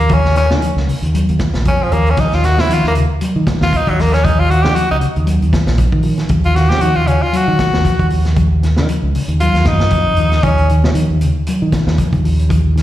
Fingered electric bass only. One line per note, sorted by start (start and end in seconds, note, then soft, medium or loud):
0.00 0.52 D#2 medium
0.51 0.60 D#3 medium
0.76 0.85 C#2 medium
1.02 1.23 D#2 medium
1.29 1.38 D#2 medium
1.55 1.63 A#1 medium
1.66 1.89 F2 medium
1.92 2.15 D#2 medium
2.17 2.59 D#2 medium
2.57 2.66 C#3 medium
2.69 2.80 D#3 medium
2.84 3.04 D#2 medium
3.36 3.44 D#3 medium
3.62 3.70 D#2 medium
3.88 4.67 D#2 medium
4.65 4.74 D#3 medium
4.91 5.00 C#2 medium
5.17 5.37 D#2 medium
5.42 5.51 D#2 medium
5.68 5.88 A#1 medium
5.93 6.22 D#3 medium
6.29 6.71 D#2 medium
6.69 6.79 C#3 medium
6.83 6.94 D#3 medium
6.97 7.17 D#2 medium
7.48 7.57 D#3 medium
7.74 7.83 D#2 medium
8.00 8.79 D#2 medium
8.78 8.87 D#3 medium
9.03 9.12 C#2 medium
9.28 9.49 D#2 medium
9.54 9.63 D#2 medium
9.66 9.89 F#2 medium
9.92 10.15 F2 medium
10.17 10.41 D#2 medium
10.43 10.85 D#2 medium
10.84 10.93 C#3 medium
10.94 11.06 D#3 medium
11.10 11.30 D#2 medium
11.62 11.71 D#3 medium
11.87 11.96 D#2 medium
12.13 12.83 D#2 medium